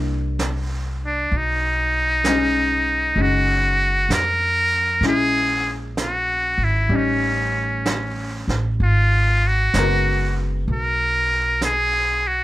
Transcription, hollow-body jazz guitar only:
0.00 1.31 A#3 soft
0.00 1.34 D4 soft
0.00 1.37 E4 soft
2.25 3.16 G#3 soft
2.25 3.18 C#4 medium
2.29 3.19 D#4 soft
3.17 5.02 G#3 soft
3.17 5.03 C#4 soft
3.17 5.04 D#4 soft
5.03 6.89 G#3 soft
5.03 6.90 C#4 soft
5.03 6.91 E4 soft
6.89 8.79 G3 soft
6.89 8.81 C#4 soft
6.95 8.82 D#4 soft
9.74 12.44 G#3 soft
9.74 12.44 B3 soft
9.74 12.44 F#4 soft
9.79 12.44 A#4 soft

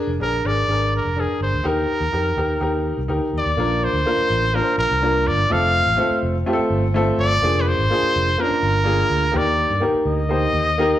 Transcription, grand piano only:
0.20 0.39 D4 medium
0.20 0.39 G#4 medium
0.20 0.40 A#4 medium
0.45 0.63 D4 medium
0.45 0.64 G#4 medium
0.45 0.64 A#4 medium
0.69 1.05 D4 medium
0.69 1.06 G#4 medium
0.69 1.07 A#4 medium
1.16 1.53 D4 medium
1.16 1.54 G#4 medium
1.16 1.55 A#4 medium
1.64 2.01 D#4 medium
1.64 2.02 G4 medium
1.64 2.02 A#4 loud
2.12 2.31 D#4 medium
2.12 2.32 G4 medium
2.12 2.32 A#4 medium
2.37 2.55 D#4 medium
2.37 2.56 G4 medium
2.37 2.56 A#4 medium
2.60 2.97 D#4 medium
2.60 2.98 G4 medium
2.60 2.99 A#4 medium
3.08 3.45 D#4 medium
3.08 3.46 G4 medium
3.08 3.46 A#4 medium
3.57 3.94 A#3 medium
3.57 3.95 D4 medium
3.57 3.95 F4 medium
3.57 3.95 A#4 medium
4.06 4.42 A#3 medium
4.06 4.43 D4 medium
4.06 4.43 F4 medium
4.06 4.43 A#4 medium
4.54 4.90 A#3 medium
4.54 4.91 D4 medium
4.54 4.91 F4 medium
4.54 4.60 A#4 medium
4.61 4.94 C5 medium
5.02 5.39 A#3 medium
5.02 5.39 D4 medium
5.02 5.39 F4 medium
5.02 5.39 A#4 medium
5.50 5.86 A3 medium
5.50 5.87 C4 medium
5.50 5.87 F4 medium
5.50 5.87 A4 medium
5.97 6.34 A3 medium
5.97 6.34 C4 medium
5.97 6.34 F4 medium
5.97 6.35 A4 medium
6.46 6.83 A3 medium
6.46 6.83 C4 medium
6.46 6.83 F4 medium
6.46 6.53 G4 medium
6.53 6.86 A4 medium
6.94 7.31 A3 medium
6.94 7.31 C4 medium
6.94 7.31 F4 medium
6.94 7.31 A4 loud
7.42 7.79 A#3 medium
7.42 7.79 D4 medium
7.42 7.80 F4 medium
7.42 7.80 G#4 medium
7.90 8.27 A#3 medium
7.90 8.27 D4 medium
7.90 8.27 F4 medium
7.90 8.28 G#4 medium
8.38 8.75 A#3 medium
8.38 8.44 C#4 medium
8.38 8.75 F4 medium
8.38 8.75 A#4 medium
8.44 8.78 D4 medium
8.84 9.22 A#3 medium
8.84 9.22 D4 medium
8.84 9.22 F4 medium
8.84 9.22 G#4 medium
9.32 9.69 A#3 medium
9.32 9.70 D#4 medium
9.32 9.71 G4 medium
9.32 9.71 A#4 medium
9.80 10.18 A#3 medium
9.80 10.18 D#4 medium
9.80 10.18 G4 medium
9.80 10.19 A#4 medium
10.29 10.66 A#3 medium
10.29 10.67 D#4 medium
10.29 10.67 G4 medium
10.29 10.67 C5 medium
10.78 10.99 A#3 medium
10.78 10.99 D#4 medium
10.78 10.99 G4 medium
10.78 10.99 A#4 medium

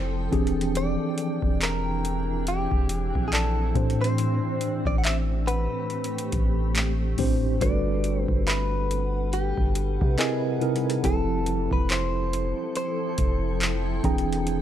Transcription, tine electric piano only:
0.31 1.70 E3 loud
0.31 1.71 C4 medium
0.31 1.71 D4 medium
0.31 1.71 G4 medium
0.31 1.71 G#4 loud
3.74 5.13 A2 medium
3.74 5.13 E3 medium
3.74 5.14 C4 medium
3.74 5.14 D4 medium
3.74 5.14 G4 medium
3.74 5.14 C5 loud
7.18 7.53 A2 medium
7.18 7.53 E3 medium
7.18 7.53 C4 medium
7.18 7.54 D4 medium
7.18 7.54 G4 medium
7.18 7.54 C5 loud
7.60 8.97 G3 medium
7.60 8.97 D4 medium
7.60 8.97 F#4 medium
7.60 8.98 A4 medium
7.60 8.98 B4 medium
10.18 10.54 C3 medium
10.18 10.54 C4 medium
10.18 10.54 E4 medium
10.18 10.54 G#4 medium
10.18 10.55 A#4 medium
10.18 10.54 D#5 medium
10.60 10.96 C3 medium
10.60 10.96 C4 medium
10.60 10.96 D#4 medium
10.60 10.97 E4 medium
10.60 10.97 G#4 medium
10.60 10.97 A#4 medium
11.03 12.40 F3 medium
11.03 12.40 C4 medium
11.03 12.40 E4 medium
11.03 12.40 G4 medium
11.03 12.41 A4 medium
14.03 14.62 E3 loud
14.03 14.62 C4 medium
14.03 14.62 D4 medium
14.03 14.62 G#4 loud
14.03 14.62 G5 medium

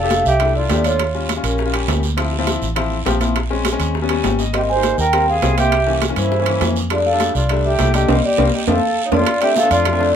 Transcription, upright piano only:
0.03 0.29 A3 medium
0.03 0.29 D4 medium
0.03 0.29 G4 medium
0.40 0.61 A3 medium
0.40 0.61 D4 medium
0.40 0.61 E4 medium
0.70 0.80 A3 medium
0.70 0.80 D4 medium
0.70 0.80 G4 medium
0.85 0.99 A3 medium
0.85 0.99 D4 medium
0.85 1.00 F4 medium
1.14 1.30 G3 medium
1.14 1.30 C#4 medium
1.14 1.30 F4 medium
1.37 1.57 G3 medium
1.37 1.57 C#4 medium
1.37 1.57 F4 medium
1.65 1.71 G3 medium
1.65 1.71 C#4 medium
1.65 1.71 F4 medium
1.73 2.04 G3 medium
1.73 2.04 C#4 medium
1.73 2.04 G4 medium
2.17 2.33 F3 medium
2.17 2.33 C4 medium
2.17 2.33 E4 medium
2.39 2.65 F3 medium
2.39 2.65 C4 medium
2.39 2.65 E4 medium
2.76 2.97 F3 medium
2.76 2.97 C4 medium
2.76 2.97 E4 medium
3.06 3.16 F3 medium
3.06 3.16 C4 medium
3.06 3.17 G4 loud
3.21 3.36 F3 medium
3.21 3.36 C4 medium
3.21 3.36 E4 medium
3.50 3.66 G#3 medium
3.50 3.66 C4 medium
3.50 3.66 C#4 medium
3.72 3.93 G#3 medium
3.72 3.93 C4 medium
3.72 3.93 C#4 medium
4.02 4.07 G3 medium
4.02 4.07 B3 medium
4.02 4.08 C#4 medium
4.10 4.41 G3 medium
4.10 4.41 B3 medium
4.10 4.41 C#4 medium
4.25 4.38 G5 medium
4.40 4.53 D#5 medium
4.53 4.69 G3 medium
4.53 4.69 A#3 medium
4.53 4.70 C4 medium
4.76 5.02 G3 medium
4.76 5.02 A#3 medium
4.76 5.02 D#4 medium
5.13 5.34 G3 medium
5.13 5.34 A#3 medium
5.13 5.34 C4 medium
5.42 5.53 G3 medium
5.42 5.53 A#3 medium
5.42 5.53 C4 medium
5.57 5.72 G3 medium
5.57 5.72 A#3 medium
5.57 5.72 C4 medium
5.87 6.02 E3 medium
5.87 6.03 A#3 medium
5.87 6.03 C#4 medium
6.09 6.30 E3 medium
6.09 6.30 A#3 medium
6.09 6.30 C#4 medium
6.39 6.44 E3 medium
6.39 6.44 A#3 medium
6.39 6.44 C#4 medium
6.47 6.78 E3 medium
6.47 6.78 A#3 medium
6.47 6.78 C#4 medium
6.91 7.06 G3 medium
6.91 7.06 A3 medium
6.91 7.06 D4 medium
7.13 7.39 G3 medium
7.13 7.39 A3 medium
7.13 7.39 D4 medium
7.50 7.71 G3 medium
7.50 7.71 A3 medium
7.50 7.71 D4 medium
7.79 7.90 G3 medium
7.79 7.90 A3 medium
7.79 7.90 E4 medium
7.94 8.08 G3 medium
7.94 8.09 A3 medium
7.94 8.09 D4 medium
8.09 8.18 G3 medium
8.09 8.18 A#3 medium
8.09 8.18 C4 medium
8.38 8.48 G3 medium
8.38 8.48 A#3 medium
8.38 8.48 C4 medium
8.68 8.77 F3 medium
8.68 8.77 A3 medium
8.68 8.77 C4 medium
9.12 9.21 F3 medium
9.12 9.21 A3 medium
9.12 9.21 C4 medium
9.41 9.57 A3 medium
9.41 9.57 C4 medium
9.41 9.57 D4 medium
9.63 9.84 A3 medium
9.63 9.84 C4 medium
9.63 9.84 D4 medium
9.92 9.98 A3 medium
9.92 9.98 C4 medium
9.92 9.98 D4 medium
10.00 10.15 A3 medium
10.00 10.16 C4 medium
10.00 10.16 D4 medium

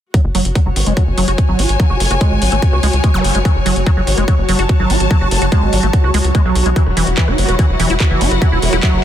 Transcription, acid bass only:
0.14 0.21 F#3 medium
0.35 0.45 F#3 loud
0.56 0.60 F#3 loud
0.66 0.70 F#3 medium
0.87 0.93 G#3 medium
0.97 1.04 F#3 medium
1.18 1.27 F#3 loud
1.28 1.32 F#4 loud
1.49 1.60 F#3 medium
1.59 1.69 F#4 medium
1.80 1.87 F#3 medium
1.90 1.97 F#4 medium
2.11 2.15 F#4 loud
2.21 2.43 G#3 medium
2.42 2.52 F#3 loud
2.52 2.56 A3 medium
2.73 2.80 F#4 medium
2.83 2.87 G#3 loud
3.04 3.11 G#3 medium
3.14 3.24 F#3 medium
3.35 3.39 G#3 medium
3.45 3.52 F#3 medium
3.66 3.76 F#3 loud
3.87 3.91 F#3 loud
3.97 4.01 F#3 medium
4.18 4.24 G#3 medium
4.28 4.35 F#3 medium
4.49 4.58 F#3 loud
4.59 4.63 F#4 loud
4.80 4.92 F#3 medium
4.90 5.00 F#4 medium
5.11 5.18 F#3 medium
5.21 5.28 F#4 medium
5.42 5.46 F#4 loud
5.52 5.74 G#3 medium
5.73 5.83 F#3 loud
5.83 5.87 A3 medium
6.04 6.11 F#4 medium
6.14 6.18 G#3 loud
6.35 6.42 G#3 medium
6.45 6.55 F#3 medium
6.66 6.70 G#3 medium
6.76 6.83 E3 medium
6.97 7.07 E3 loud
7.18 7.29 E3 loud
7.28 7.38 E4 loud
7.49 7.56 F#4 medium
7.59 7.66 E3 medium
7.80 7.89 E3 loud
7.90 7.94 E4 loud
8.11 8.23 E3 medium
8.21 8.31 E4 medium
8.42 8.49 E3 medium
8.52 8.59 E4 medium
8.73 8.77 E4 loud
8.83 9.04 F#3 medium

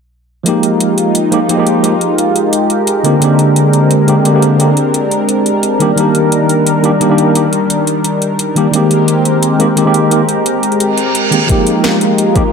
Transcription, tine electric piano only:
0.43 1.29 F3 medium
0.43 1.30 G#3 medium
0.43 1.30 A#3 medium
0.43 1.31 D#4 medium
0.49 1.31 G4 loud
1.31 1.38 F3 medium
1.31 1.38 G#3 medium
1.31 1.38 A#3 medium
1.31 1.38 D#4 medium
1.31 1.39 G4 loud
1.48 1.55 F3 medium
1.48 1.55 G#3 medium
1.48 1.55 A#3 medium
1.48 1.56 D#4 medium
1.48 1.56 G4 medium
1.57 1.81 F3 medium
1.57 1.82 G#3 medium
1.57 1.82 A#3 medium
1.57 1.82 D#4 medium
1.57 1.83 G4 loud
1.83 1.93 F3 medium
1.83 1.93 G#3 medium
1.83 1.93 A#3 medium
1.83 1.94 D#4 medium
1.83 1.94 G4 medium
3.03 3.13 D3 medium
3.03 3.14 G#3 medium
3.03 3.14 A#3 medium
3.03 3.14 C4 medium
3.03 3.15 G4 loud
3.19 4.05 D3 medium
3.19 4.05 G#3 medium
3.19 4.06 A#3 medium
3.19 4.07 C4 medium
3.24 4.07 G4 loud
4.07 4.13 D3 medium
4.07 4.14 G#3 medium
4.07 4.14 A#3 medium
4.07 4.14 C4 medium
4.07 4.15 G4 loud
4.24 4.30 D3 medium
4.24 4.31 G#3 medium
4.24 4.31 A#3 medium
4.24 4.31 C4 medium
4.24 4.32 G4 medium
4.33 4.57 D3 medium
4.33 4.57 G#3 medium
4.33 4.58 A#3 medium
4.33 4.58 C4 medium
4.33 4.58 G4 loud
4.58 4.69 D3 medium
4.58 4.69 G#3 medium
4.58 4.69 A#3 medium
4.58 4.70 C4 medium
4.58 4.70 G4 medium
5.79 5.89 D#3 medium
5.79 5.90 G3 medium
5.79 5.90 A#3 medium
5.79 5.90 D4 medium
5.79 5.91 G4 loud
5.95 6.81 D#3 medium
5.95 6.81 G3 medium
5.95 6.82 A#3 medium
5.95 6.82 D4 medium
6.00 6.83 G4 loud
6.83 6.89 D#3 medium
6.83 6.89 G3 medium
6.83 6.90 A#3 medium
6.83 6.90 D4 medium
6.83 6.90 G4 loud
7.00 7.06 D#3 medium
7.00 7.07 G3 medium
7.00 7.07 A#3 medium
7.00 7.07 D4 medium
7.00 7.08 G4 medium
7.09 7.33 D#3 medium
7.09 7.33 G3 medium
7.09 7.34 A#3 medium
7.09 7.34 D4 medium
7.09 7.34 G4 loud
7.34 7.44 D#3 medium
7.34 7.45 G3 medium
7.34 7.45 A#3 medium
7.34 7.45 D4 medium
7.34 7.46 G4 medium
8.55 8.65 D#3 medium
8.55 8.65 G3 medium
8.55 8.66 A#3 medium
8.55 8.66 D4 medium
8.55 8.66 G4 loud
8.71 9.56 D#3 medium
8.71 9.57 G#3 medium
8.71 9.58 A#3 medium
8.71 9.58 C4 medium
8.76 9.59 G4 loud
9.59 9.65 D#3 medium
9.59 9.65 G#3 medium
9.59 9.66 A#3 medium
9.59 9.66 C4 medium
9.59 9.66 G4 loud
9.76 9.82 D#3 medium
9.76 9.83 G#3 medium
9.76 9.83 A#3 medium
9.76 9.83 C4 medium
9.76 9.84 G4 loud
9.85 10.09 D#3 medium
9.85 10.09 G#3 medium
9.85 10.09 A#3 medium
9.85 10.10 C4 medium
9.85 10.10 G4 loud
10.10 10.20 D#3 medium
10.10 10.21 G#3 medium
10.10 10.21 A#3 medium
10.10 10.21 C4 medium
10.10 10.22 G4 medium
11.31 11.37 D#3 medium
11.31 11.38 G#3 medium
11.31 11.38 A#3 medium
11.31 11.38 C4 medium
11.31 11.39 G4 medium
11.47 12.32 F3 medium
11.47 12.33 G#3 medium
11.47 12.33 A#3 medium
11.47 12.34 D#4 medium
11.52 12.35 G4 loud
12.34 12.41 F3 loud
12.34 12.41 G#3 medium
12.34 12.42 A#3 medium
12.34 12.42 D#4 medium
12.34 12.42 G4 loud

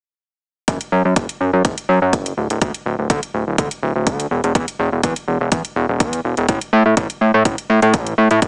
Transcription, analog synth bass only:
0.68 0.78 F#1 medium
0.92 1.03 F#2 loud
1.05 1.14 F#2 medium
1.16 1.27 F#1 medium
1.41 1.51 F#2 medium
1.53 1.63 F#2 medium
1.65 1.75 F#1 medium
1.89 1.99 F#2 medium
2.02 2.15 F#2 medium
2.13 2.33 F#1 medium
2.37 2.48 D1 medium
2.50 2.59 D1 medium
2.62 2.72 D2 loud
2.86 2.96 D1 medium
2.99 3.08 D1 medium
3.10 3.20 D2 loud
3.34 3.45 D1 medium
3.47 3.56 D1 medium
3.58 3.69 D2 medium
3.83 3.93 D1 medium
3.96 4.08 D1 medium
4.07 4.27 D2 medium
4.31 4.41 E1 medium
4.44 4.53 E1 medium
4.55 4.66 E2 loud
4.79 4.90 E1 loud
4.92 5.01 E1 medium
5.04 5.14 E2 loud
5.28 5.38 E1 medium
5.41 5.50 E1 medium
5.52 5.62 E2 medium
5.76 5.87 E1 medium
5.89 6.02 E1 medium
6.00 6.20 E2 medium
6.25 6.35 E1 medium
6.37 6.47 E1 medium
6.49 6.59 A1 loud
6.73 6.83 A2 loud
6.86 6.95 A2 medium
6.97 7.08 A1 loud
7.21 7.32 A2 medium
7.34 7.43 A2 medium
7.45 7.56 A1 medium
7.70 7.80 A2 medium
7.82 7.95 A2 medium
7.94 8.14 A1 medium
8.18 8.29 A2 medium
8.31 8.40 A2 medium
8.42 8.48 F#1 loud

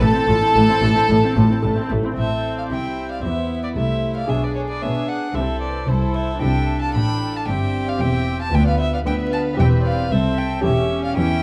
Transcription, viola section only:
0.00 0.13 A3 medium
0.14 0.28 C4 medium
0.27 0.41 A3 medium
0.41 0.55 C4 medium
0.55 0.68 A3 medium
0.68 0.82 C4 medium
0.82 0.96 A3 medium
0.96 1.10 C4 medium
1.10 1.22 A3 medium
1.23 1.37 C4 medium
1.36 1.50 A3 medium
1.50 1.64 C4 medium
1.64 1.76 A3 medium
1.77 1.91 C4 medium
1.90 2.04 A3 medium
2.04 2.16 C4 medium
2.17 3.20 C4 soft
3.23 3.76 B3 soft
3.76 4.30 A3 soft
4.30 5.34 D4 soft
5.36 5.89 C4 soft
5.89 6.42 E4 soft
6.42 7.46 D4 soft
7.47 8.53 C4 soft
8.53 9.04 B3 soft
9.06 9.57 B3 medium
9.59 10.10 C4 soft
10.11 10.63 C4 medium
10.63 11.43 C#4 medium

